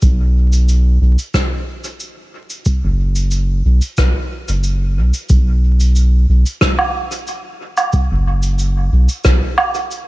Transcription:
0.02 sub bass B1, kick, cabasa
0.53 cabasa
0.69 cabasa
1.01 sub bass B1
1.19 cabasa
1.34 kick, cross-stick, cabasa
1.84 cabasa
2.00 cabasa
2.50 cabasa
2.65 kick, cabasa
2.84 sub bass F#1
3.16 cabasa
3.31 cabasa
3.65 sub bass B1
3.82 cabasa
3.97 sub bass B1, kick, cross-stick, cabasa
4.48 sub bass F#1, cabasa
4.64 cabasa
4.97 sub bass B1
5.14 cabasa
5.29 sub bass B1, kick, cabasa
5.80 cabasa
5.96 cabasa
6.29 sub bass B1
6.46 cabasa
6.61 kick, cross-stick, cabasa
6.79 low woodblock
7.12 cabasa
7.27 cabasa
7.77 cabasa, low woodblock
7.92 kick, cabasa
8.11 sub bass F#1
8.43 cabasa
8.59 cabasa
8.92 sub bass B1
9.09 cabasa
9.24 sub bass B1, kick, cross-stick, cabasa
9.58 low woodblock
9.74 cabasa
9.91 cabasa

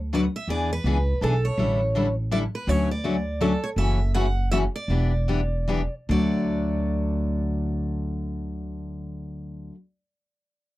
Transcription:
Already playing: upright bass D2
0.13 steel-string acoustic guitar D3 F#3 A3 D4 F#4 B4 D5
0.36 steel-string acoustic guitar E5
0.48 upright bass E2, steel-string acoustic guitar E3 B3 D4 G#4 D5
0.73 steel-string acoustic guitar B4
0.84 upright bass C#2, steel-string acoustic guitar E3 B3 D4 G#4
1.21 upright bass B1, steel-string acoustic guitar E3 B3 D4 G#4 A4
1.45 steel-string acoustic guitar C#5
1.58 upright bass A1, steel-string acoustic guitar D3 G3 D4 E4 A4
1.95 steel-string acoustic guitar D3 G3 D4 E4 A4
2.31 steel-string acoustic guitar D3 G3 D4 E4 A4 D5
2.55 steel-string acoustic guitar B4
2.67 upright bass D2, steel-string acoustic guitar D3 F#3 A3 C#4 F#4 C#5
2.91 steel-string acoustic guitar D5
3.04 steel-string acoustic guitar D3 F#3 A3 C#4 F#4
3.41 steel-string acoustic guitar D3 F#3 A3 C#4 F#4 A4
3.64 steel-string acoustic guitar C#5
3.76 upright bass F#1, steel-string acoustic guitar C#3 E3 A3 C#4 F#4 E5
4.14 steel-string acoustic guitar C#3 E3 A3 C#4 F#4 F#5
4.51 steel-string acoustic guitar C#3 E3 A3 C#4 F#4 E5
4.76 steel-string acoustic guitar D5
4.88 upright bass E1, steel-string acoustic guitar E3 B3 D4 G4
5.28 steel-string acoustic guitar E3 B3 D4 G4
5.68 steel-string acoustic guitar E3 B3 D4 G4
6.09 upright bass D2, steel-string acoustic guitar D3 F#3 A3 F#4 D5

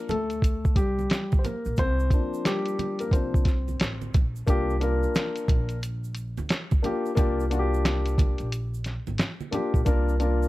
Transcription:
Already playing: grand piano A#4
0.09 upright bass D2, grand piano A3 A4, closed hi-hat, high conga, low conga, shaker
0.30 closed hi-hat, shaker
0.42 kick, closed hi-hat, shaker
0.65 kick, shaker
0.76 upright bass C2, grand piano G3 G4, kick, closed hi-hat, shaker
0.99 high conga, shaker
1.10 snare, closed hi-hat, shaker
1.32 kick, high conga, shaker
1.39 grand piano C5
1.44 grand piano A#3 A#4, closed hi-hat, low conga, shaker
1.65 upright bass A#1, shaker
1.77 upright bass C2, grand piano C4 C5, kick, closed hi-hat, shaker
2.00 shaker
2.10 grand piano F3 A#3 D4, kick, closed hi-hat, high conga, shaker
2.34 shaker
2.45 grand piano G3 G4, snare, closed hi-hat, high conga, shaker
2.66 closed hi-hat, shaker
2.79 closed hi-hat, high conga, low conga, shaker
2.99 grand piano A#3 A#4, closed hi-hat, shaker
3.11 upright bass C3, grand piano F3 A#3 C4 D4 C5, kick, closed hi-hat, shaker
3.34 kick, shaker
3.45 upright bass C2, kick, snare, closed hi-hat, shaker
3.68 high conga, shaker
3.80 upright bass A1, snare, closed hi-hat, shaker
4.02 high conga, shaker
4.14 upright bass A#1, kick, closed hi-hat, low conga, shaker
4.36 shaker
4.47 upright bass C2, grand piano A#3 D4 F4 G4, kick, closed hi-hat, shaker
4.70 shaker
4.80 grand piano A#3 D4 F4 A#4, closed hi-hat, shaker
5.03 shaker
5.15 snare, closed hi-hat, shaker
5.36 closed hi-hat, shaker
5.48 upright bass A#1, kick, closed hi-hat, high conga, low conga, shaker
5.69 closed hi-hat, shaker
5.83 closed hi-hat, shaker
6.04 shaker
6.15 closed hi-hat, shaker
6.37 upright bass D2, high conga, shaker
6.49 snare, closed hi-hat, shaker
6.71 kick, high conga, shaker
6.82 grand piano A#3 D4 F4 G4, closed hi-hat, low conga, shaker
7.06 shaker
7.15 upright bass C2, grand piano A#3 D4 F4 G4, kick, closed hi-hat, shaker
7.40 shaker
7.50 grand piano A#3 D4 F4 F#4, closed hi-hat, shaker
7.59 grand piano G4
7.74 shaker
7.85 snare, closed hi-hat, shaker
8.06 closed hi-hat, shaker
8.18 kick, closed hi-hat, high conga, low conga, shaker
8.38 upright bass A#1, closed hi-hat, shaker
8.52 closed hi-hat, shaker
8.74 shaker
8.84 snare, closed hi-hat, shaker
9.07 upright bass G#1, high conga, shaker
9.18 snare, closed hi-hat, shaker
9.41 high conga, shaker
9.51 grand piano A#3 D4 F4 G4, closed hi-hat, low conga, shaker
9.74 upright bass A#1, kick, shaker
9.85 upright bass C2, grand piano A#3 D4 F4 A#4, kick, closed hi-hat, shaker
10.09 shaker
10.19 grand piano A#3 D4 F4 A#4, closed hi-hat, shaker
10.43 shaker

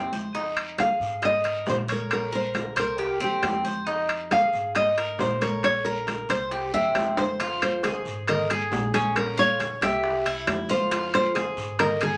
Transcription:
Already playing: upright bass F2, cuban tres C4
0.12 cuban tres C5, high conga, short guiro
0.35 cuban tres D#4, high bongo, high conga, long guiro
0.57 high conga, high timbale
0.78 cuban tres G#4, nylon-string guitar F5, high bongo, high conga, high timbale, low timbale, short guiro
1.00 upright bass G#2, high conga, short guiro
1.22 cuban tres D#5, nylon-string guitar D#5, high bongo, high conga, high timbale, long guiro
1.44 cuban tres A#4, high conga, high timbale
1.66 upright bass A#1, nylon-string guitar C5, high bongo, low bongo, high conga, low timbale, short guiro
1.88 nylon-string guitar A#4, cuban tres C#5, high conga, high timbale, short guiro
2.10 nylon-string guitar A#4, high bongo, high timbale, long guiro
2.33 cuban tres A#4, nylon-string guitar C5, high bongo, high conga
2.54 high bongo, high conga, high timbale, low timbale, short guiro
2.76 upright bass C2, nylon-string guitar A#4, cuban tres C5, high bongo, high conga, high timbale, short guiro
2.98 cuban tres G4, high bongo, high conga, long guiro
3.20 upright bass E2, cuban tres C4, nylon-string guitar G4, high conga
3.42 upright bass F2, high bongo, low bongo, high conga, high timbale, low timbale, short guiro
3.64 cuban tres C5, high conga, short guiro
3.87 cuban tres D#4, high bongo, high conga, long guiro
4.09 high conga, high timbale
4.31 cuban tres G#4, nylon-string guitar F5, high bongo, high conga, high timbale, low timbale, short guiro
4.53 upright bass G#2, high conga, short guiro
4.75 cuban tres D#5, nylon-string guitar D#5, high bongo, high conga, high timbale, long guiro
4.98 cuban tres A#4, high conga, high timbale
5.18 upright bass A#1, nylon-string guitar C5, high bongo, low bongo, high conga, low timbale, short guiro
5.41 nylon-string guitar A#4, cuban tres C#5, high conga, high timbale, short guiro
5.63 nylon-string guitar C#5, high bongo, high conga, high timbale, long guiro
5.85 nylon-string guitar A#4, cuban tres A#4, high bongo, high conga
6.07 high bongo, high conga, high timbale, low timbale, short guiro
6.29 upright bass C2, nylon-string guitar C5, cuban tres C5, high bongo, high conga, high timbale, short guiro
6.51 cuban tres G4, high bongo, high conga, long guiro
6.73 upright bass E2, cuban tres C4, nylon-string guitar E5, high bongo, high conga
6.95 upright bass F2, high bongo, low bongo, high conga, high timbale, low timbale, short guiro
7.17 cuban tres C5, nylon-string guitar C5, high conga, high timbale, short guiro
7.39 cuban tres F4, high bongo, high timbale, long guiro
7.61 nylon-string guitar C5, high bongo, high conga, high timbale
7.83 cuban tres G#4, high bongo, high conga, high timbale, low timbale, short guiro
8.05 upright bass G#2, high bongo, high conga, short guiro
8.27 nylon-string guitar A#4, cuban tres D#5, high bongo, high conga, low conga, high timbale, long guiro
8.50 cuban tres G#4, nylon-string guitar G#4, high conga, high timbale
8.71 upright bass A#1, high bongo, low bongo, high conga, low timbale, short guiro
8.94 cuban tres C#4, nylon-string guitar G#4, high bongo, high conga, high timbale, short guiro
9.16 nylon-string guitar A#4, high bongo, high conga, high timbale, long guiro
9.38 cuban tres F4, nylon-string guitar C#5, high bongo
9.60 cuban tres C#5, high bongo, high conga, high timbale, low timbale, short guiro
9.81 upright bass C2, cuban tres G4, nylon-string guitar E5, high bongo, high timbale, short guiro
10.03 high bongo, high conga, long guiro
10.26 cuban tres E4, high conga, high timbale
10.47 upright bass F2, high bongo, low bongo, high conga, high timbale, low timbale, short guiro
10.69 cuban tres F4, nylon-string guitar C5, high bongo, high conga, short guiro
10.91 cuban tres F4, high bongo, high conga, high timbale, long guiro
11.14 nylon-string guitar C5, high conga, high timbale
11.35 cuban tres G#4, high bongo, high conga, high timbale, low timbale, short guiro
11.57 upright bass G#2, high bongo, high conga, short guiro
11.79 nylon-string guitar A#4, cuban tres D#5, high bongo, high conga, low conga, high timbale, long guiro
12.01 cuban tres G#4, nylon-string guitar G#4, high conga, low conga, high timbale

